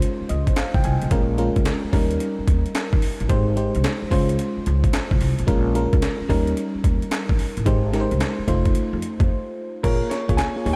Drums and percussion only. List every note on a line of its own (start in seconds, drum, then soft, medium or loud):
0.02 closed hi-hat medium
0.29 closed hi-hat medium
0.47 kick loud
0.47 closed hi-hat soft
0.56 snare loud
0.56 clap medium
0.56 closed hi-hat medium
0.74 kick loud
0.84 closed hi-hat medium
1.02 closed hi-hat medium
1.11 kick loud
1.11 closed hi-hat medium
1.38 closed hi-hat medium
1.56 kick loud
1.56 closed hi-hat soft
1.65 snare loud
1.65 clap medium
1.65 closed hi-hat medium
1.93 kick medium
1.93 open hi-hat medium
2.11 closed hi-hat medium
2.20 closed hi-hat medium
2.48 kick loud
2.48 closed hi-hat medium
2.66 closed hi-hat soft
2.75 snare loud
2.75 clap medium
2.75 closed hi-hat medium
2.93 kick loud
3.02 open hi-hat medium
3.20 closed hi-hat soft
3.29 kick loud
3.29 closed hi-hat medium
3.57 closed hi-hat medium
3.75 closed hi-hat medium
3.84 snare loud
3.84 clap loud
3.84 closed hi-hat medium
4.11 kick medium
4.11 open hi-hat medium
4.29 closed hi-hat medium
4.39 closed hi-hat medium
4.66 closed hi-hat medium
4.84 kick medium
4.84 closed hi-hat soft
4.93 snare loud
4.93 clap medium
4.93 closed hi-hat medium
5.11 kick loud
5.21 open hi-hat medium
5.39 closed hi-hat soft
5.48 kick loud
5.48 closed hi-hat medium
5.75 closed hi-hat medium
5.93 kick medium
5.93 closed hi-hat soft
6.02 snare loud
6.02 clap medium
6.02 closed hi-hat medium
6.30 kick medium
6.30 open hi-hat medium
6.47 closed hi-hat medium
6.57 closed hi-hat medium
6.84 kick loud
6.84 closed hi-hat medium
7.02 closed hi-hat soft
7.11 snare loud
7.11 clap loud
7.11 closed hi-hat medium
7.29 kick medium
7.39 open hi-hat medium
7.57 closed hi-hat medium
7.66 kick loud
7.66 closed hi-hat medium
7.94 snare medium
7.94 closed hi-hat medium
8.11 closed hi-hat soft
8.20 snare loud
8.20 clap medium
8.20 closed hi-hat medium
8.48 kick medium
8.48 closed hi-hat medium
8.65 kick loud
8.65 closed hi-hat medium
8.75 closed hi-hat medium
9.02 closed hi-hat medium
9.20 kick loud
9.20 closed hi-hat soft
9.84 kick loud
9.84 closed hi-hat medium
9.84 crash loud
10.11 snare medium
10.11 closed hi-hat medium
10.29 kick medium
10.29 closed hi-hat medium
10.38 snare loud
10.38 clap medium
10.38 closed hi-hat medium
10.66 open hi-hat medium